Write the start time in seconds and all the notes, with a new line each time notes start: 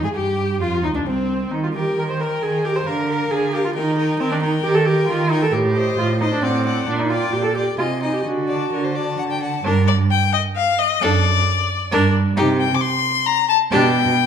0.04 G#2 G#4
0.15 G2 G4
0.60 F2 F4
0.83 D#2 D#4
0.94 D2 D4
1.06 C2 C4
1.50 D#3 D#4
1.64 F4
1.73 G4 A#4 G5
1.96 D#3 A#4
2.10 C5
2.19 A#4 G5
2.41 D#3 G#4
2.64 G4 A#4 G5
2.76 C5
2.86 D3 A#4 F5
3.08 A#4 F5
3.31 D3 G#4
3.53 G4 A#4 F5
3.65 F4
3.74 D#3 D#4 A#4 G5
3.97 A#4 G5
4.19 D#3 C4 A#4 G5
4.31 D4
4.42 D#4 A#4 G5
4.63 D#3 G4
4.75 A4
4.85 G4 A#4 G5
5.08 D#3 F4
5.30 D#4 A#4 G5
5.42 A4
5.53 A2 G4
5.76 C5 D#5
5.98 A2 F4
6.21 D#4 C5 D#5
6.32 D4
6.43 A2 C4 D5 F#5
6.66 D5 F#5
6.87 A#2 D4
6.99 D#4
7.10 F4 D5 G5
7.32 A#2 G4
7.44 A4
7.55 G4 D5 G5
7.78 C3 F4 D#5 G#5
8.01 D#4 D#5 G#5
8.13 G4
8.25 D3 F#4
8.48 D5 A5
8.72 D3 A#4
8.84 C5
8.95 D5 A5
9.18 D3 F#5
9.31 G5
9.42 F#5 A5
9.64 G2 D4 A#4
9.88 D5
10.11 G5
10.34 D#5
10.56 F5
10.79 D#5
11.01 F#2 D4 A4 D5
11.92 G2 D4 A#4
12.36 C3 D#4 G4
12.60 G5
12.75 D6
12.81 C6
13.26 A#5
13.49 A5
13.71 B2 D4 G4 G5